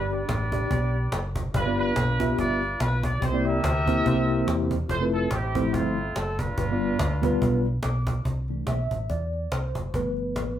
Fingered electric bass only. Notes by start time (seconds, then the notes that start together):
Already playing: G1
0.29 A1
0.71 B1
1.12 F#1
1.54 G1
1.97 B1
2.39 G1
2.80 B1
3.23 C2
3.64 D2
4.06 C2
4.47 E2
4.90 F1
5.32 A1
5.74 G1
6.16 F#1
6.58 G1
7.00 D2
7.42 B1
7.84 B1
8.25 C2
8.68 B1
8.91 A1
9.10 E2
9.52 C2
9.75 F#1
9.94 G1
10.37 A1